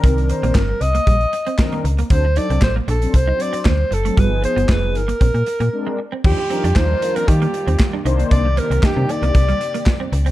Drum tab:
CC |----------------|----------------|----------------|x---------------|
HH |xxxx--xxxxxx-xxx|x-xx--xxx-xx--xx|x-xx--xxxxxx----|--xx--xxxxxx--xx|
CP |----x-------x---|----x-------x---|----x-----------|----x-------x---|
SD |----o-------o---|----o-------o---|----o-----------|----o-------o---|
BD |o---o---o---o---|o---o---o---o---|o---o---o-------|o---o---o---o---|

CC |----------------|
HH |x-xx--xxxxxx--xx|
CP |----x-------x---|
SD |----o-------o---|
BD |o---o---o---o---|